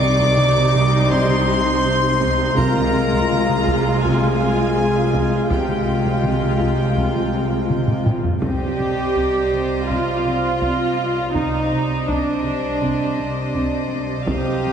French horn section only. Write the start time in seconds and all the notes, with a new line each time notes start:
1.11 G3 D#4
2.59 G#3 F4
4.04 G#3 F4
5.51 G#3 F4